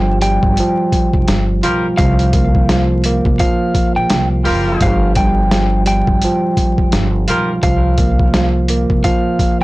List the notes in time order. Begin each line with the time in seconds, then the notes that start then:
Already playing: G1 F3 G3 G5
0.21 G3 G5, closed hi-hat
0.43 G1, kick
0.57 F3, closed hi-hat
0.92 kick, closed hi-hat
1.13 F1, kick
1.28 G1, snare, closed hi-hat
1.63 B1 G3 F4 A#4, closed hi-hat
1.97 C2 F3 F5, kick, closed hi-hat
2.19 closed hi-hat
2.33 A#3, kick, closed hi-hat
2.55 kick
2.69 F3, snare, closed hi-hat
3.04 A#3, closed hi-hat
3.25 C2, kick
3.39 F3 F5, kick, closed hi-hat
3.75 kick, closed hi-hat
3.96 A#1 G5
4.10 C2, snare, closed hi-hat
4.44 F#1 G3 F4 A#4, open hi-hat
4.81 G1 F3 F5, kick, closed hi-hat
5.15 G3 G5, kick, closed hi-hat
5.51 F3, snare, closed hi-hat
5.86 G3 G5, closed hi-hat
6.07 G1, kick
6.22 F3, closed hi-hat
6.57 kick, closed hi-hat
6.78 F1, kick
6.92 G1, snare, closed hi-hat
7.28 B1 G3 F4 A#4, closed hi-hat
7.63 C2 F3 F5, kick, closed hi-hat
7.98 A#3, kick, closed hi-hat
8.19 kick
8.34 F3, snare, closed hi-hat
8.68 A#3, closed hi-hat
8.90 C2, kick
9.04 F3 F5, kick, closed hi-hat
9.39 kick, closed hi-hat